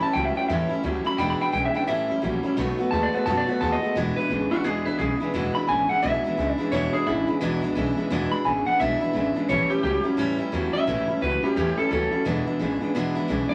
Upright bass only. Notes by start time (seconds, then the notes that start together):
0.01 muted upright bass stroke
0.15 C#2
0.49 E2
0.71 muted upright bass stroke
0.84 D2
1.05 muted upright bass stroke
1.18 E1
1.40 muted upright bass stroke
1.53 B1
1.74 muted upright bass stroke
1.88 A1
2.09 G2
2.23 A#1
2.57 B1
2.78 muted upright bass stroke
2.92 D#2
3.13 muted upright bass stroke
3.27 F#2
3.62 D#2
3.96 E1
4.30 G#1
4.51 muted upright bass stroke
4.65 B1
4.86 D2
4.99 B1
5.34 E1
5.55 muted upright bass stroke
5.68 G#1
5.90 muted upright bass stroke
6.03 B1
6.24 muted upright bass stroke
6.38 C#2
6.72 E1
7.07 G#1
7.28 muted upright bass stroke
7.42 B1
7.63 D2
7.77 B1
8.11 E1
8.32 muted upright bass stroke
8.45 G#1
8.66 muted upright bass stroke
8.80 B1
9.14 G#1
9.35 muted upright bass stroke
9.49 A1
9.70 muted upright bass stroke
9.83 C#2
10.18 E2
10.39 G2
10.53 E2
10.74 muted upright bass stroke
10.87 A1
11.08 muted upright bass stroke
11.22 C#2
11.43 muted upright bass stroke
11.57 E2
11.91 D2
12.13 muted upright bass stroke
12.26 E1
12.61 G#1
12.82 muted upright bass stroke
12.95 B1
13.16 D2
13.30 B1
13.51 muted upright bass stroke